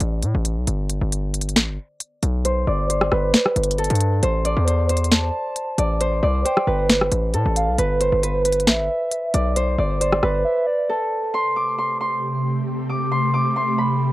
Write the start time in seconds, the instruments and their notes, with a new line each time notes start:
Already playing: harp D5
0.00 808-style bass A1, closed hi-hat
0.23 808-style bass A2, closed hi-hat
0.35 808-style bass A1
0.45 closed hi-hat
0.57 808-style bass B1
0.67 808-style bass G1, closed hi-hat
0.89 closed hi-hat
1.01 808-style bass G1
1.12 closed hi-hat
1.34 closed hi-hat
1.41 closed hi-hat
1.49 closed hi-hat
1.56 808-style bass A1, finger snap, snare, closed hi-hat
1.68 808-style bass G1
2.00 closed hi-hat
2.23 808-style bass B1, closed hi-hat
2.45 harp C5, closed hi-hat
2.67 808-style bass G1, harp D5
2.90 harp C5, closed hi-hat
3.01 cross-stick
3.12 808-style bass G1, harp B4, cross-stick
3.34 finger snap, snare, closed hi-hat
3.46 cross-stick
3.56 808-style bass G1, closed hi-hat
3.64 closed hi-hat
3.71 closed hi-hat
3.78 harp A4, closed hi-hat
3.84 closed hi-hat
3.90 808-style bass G2, closed hi-hat
3.95 closed hi-hat
4.00 closed hi-hat
4.23 808-style bass A1, harp C5, closed hi-hat
4.45 harp D5, closed hi-hat
4.57 808-style bass E2
4.67 harp C5, closed hi-hat
4.89 harp C5, closed hi-hat
4.97 closed hi-hat
5.04 closed hi-hat
5.12 soft synth lead A5, finger snap, snare, closed hi-hat
5.56 closed hi-hat
5.78 808-style bass A1, harp D5, closed hi-hat
6.01 harp C5, closed hi-hat
6.23 808-style bass C2, harp D5
6.45 harp C5, soft synth lead G5, closed hi-hat
6.57 cross-stick
6.67 808-style bass G1, harp B4
6.89 finger snap, snare, closed hi-hat
7.01 cross-stick
7.12 808-style bass A1, closed hi-hat
7.34 808-style bass A2, harp A4, closed hi-hat
7.46 808-style bass A1
7.56 soft synth lead F5, closed hi-hat
7.68 808-style bass B1
7.78 808-style bass G1, harp B4, closed hi-hat
8.00 harp C5, closed hi-hat
8.12 808-style bass G1
8.23 harp B4, closed hi-hat
8.45 harp B4, closed hi-hat
8.52 closed hi-hat
8.60 closed hi-hat
8.67 808-style bass A1, soft synth lead E5, finger snap, snare, closed hi-hat
8.79 808-style bass G1
9.11 closed hi-hat
9.34 808-style bass B1, harp D5, closed hi-hat
9.56 harp C5, closed hi-hat
9.78 808-style bass G1, harp D5
10.01 harp C5, soft synth lead D5, closed hi-hat
10.12 cross-stick
10.23 808-style bass G1, harp B4, cross-stick
10.45 soft synth lead E5
10.67 soft synth lead D5
10.89 harp A4
11.34 ambient pad C3 A3 G4, harp C6
11.56 harp D6
11.78 harp C6
12.01 harp C6
12.90 harp D6
13.12 harp C6
13.34 harp D6
13.56 harp C6
13.78 harp B5